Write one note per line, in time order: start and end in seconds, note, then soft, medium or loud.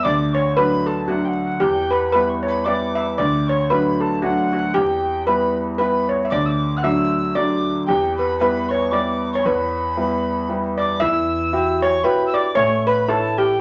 0.03 1.58 D2 medium
0.03 0.36 D5 loud
0.03 0.35 D6 medium
0.33 0.57 C#5 medium
0.33 0.55 C#6 medium
0.56 1.07 F#3 soft
0.56 1.07 A3 soft
0.56 1.08 D4 medium
0.56 0.88 B4 loud
0.56 0.88 B5 medium
0.86 1.09 A4 medium
0.86 1.11 A5 medium
1.08 1.60 F#3 soft
1.08 1.60 A3 soft
1.08 1.60 D4 medium
1.08 1.62 F#4 medium
1.08 1.26 F#5 medium
1.25 1.45 F#5 medium
1.25 1.28 G5 soft
1.45 1.63 F#5 medium
1.60 3.14 E2 medium
1.60 1.92 G4 medium
1.60 1.94 G5 medium
1.91 2.11 B4 medium
1.91 2.14 B5 medium
2.12 2.65 G3 soft
2.12 2.65 B3 soft
2.12 2.65 E4 medium
2.12 2.41 B4 medium
2.12 2.31 B5 medium
2.30 2.32 C#6 medium
2.43 2.66 C#5 medium
2.48 2.66 B5 medium
2.65 3.17 G3 soft
2.65 3.17 B3 soft
2.65 3.17 E4 soft
2.65 2.97 D5 medium
2.65 3.17 D6 medium
2.95 3.18 E5 medium
3.18 4.71 D2 medium
3.18 3.49 D5 medium
3.18 3.50 D6 medium
3.48 3.72 C#5 medium
3.48 3.72 C#6 medium
3.70 4.20 F#3 soft
3.70 4.21 A3 soft
3.70 4.21 D4 medium
3.70 4.01 B4 medium
3.70 4.02 B5 medium
4.00 4.23 A4 medium
4.00 4.22 A5 medium
4.22 4.73 F#3 soft
4.22 4.73 A3 soft
4.22 4.74 D4 medium
4.22 4.52 F#4 medium
4.22 4.76 F#5 medium
4.53 4.76 F#4 medium
4.74 6.28 E2 medium
4.74 5.28 G4 medium
4.74 5.25 G5 medium
5.26 5.78 G3 medium
5.26 5.78 B3 soft
5.26 5.78 E4 medium
5.26 5.77 B4 medium
5.26 5.55 B5 medium
5.78 6.30 G3 soft
5.78 6.30 B3 soft
5.78 6.30 E4 medium
5.78 6.10 B4 medium
5.78 6.07 B5 medium
6.09 6.26 C#5 medium
6.25 6.31 E5 medium
6.30 7.84 D2 medium
6.30 6.80 D5 medium
6.30 6.47 D6 medium
6.46 6.66 D6 medium
6.46 6.49 E6 medium
6.66 6.79 D6 medium
6.77 6.84 F#5 medium
6.77 6.84 F#6 medium
6.83 7.34 F#3 soft
6.83 7.34 A3 soft
6.83 7.34 D4 medium
6.83 7.32 E5 medium
6.83 7.37 E6 medium
7.35 7.86 F#3 soft
7.35 7.87 A3 soft
7.35 7.87 D4 soft
7.35 7.89 D5 loud
7.35 7.86 D6 medium
7.86 9.41 E2 medium
7.86 8.20 G4 medium
7.86 8.15 G5 medium
8.17 8.39 B4 medium
8.17 8.38 B5 medium
8.39 8.90 G3 soft
8.39 8.91 B3 soft
8.39 8.91 E4 medium
8.39 8.72 B4 medium
8.39 8.70 B5 medium
8.69 8.93 C#5 medium
8.69 8.93 C#6 medium
8.91 9.43 G3 soft
8.91 9.43 B3 soft
8.91 9.43 E4 medium
8.91 9.35 D5 medium
8.91 9.32 D6 medium
9.33 9.46 C#5 medium
9.33 9.46 C#6 medium
9.44 10.97 E2 medium
9.44 10.45 B4 medium
9.44 10.48 B5 medium
9.97 10.47 G3 soft
9.97 10.47 B3 soft
9.97 10.47 E4 medium
10.49 10.99 G3 soft
10.49 11.00 B3 soft
10.49 11.00 E4 soft
10.78 11.01 D5 medium
10.78 11.01 D6 medium
11.00 12.01 E2 loud
11.00 11.51 E3 medium
11.00 11.85 E5 loud
11.00 11.81 E6 medium
11.53 11.94 E4 medium
11.53 11.94 F#4 soft
11.53 11.95 G4 medium
11.82 12.03 C#5 loud
11.82 12.05 C#6 medium
12.04 12.46 E4 medium
12.04 12.46 F#4 soft
12.04 12.46 G4 medium
12.04 12.35 B4 medium
12.04 12.26 B5 medium
12.27 12.36 E6 medium
12.34 12.57 D5 medium
12.34 12.57 D6 medium
12.55 13.56 A1 loud
12.55 13.06 A3 medium
12.55 12.87 C#5 loud
12.55 12.86 C#6 medium
12.86 13.07 B4 medium
12.86 13.11 B5 medium
13.08 13.49 E4 medium
13.08 13.39 A4 loud
13.08 13.50 A4 medium
13.08 13.50 C#5 medium
13.08 13.39 A5 medium
13.38 13.61 G4 medium
13.38 13.61 G5 medium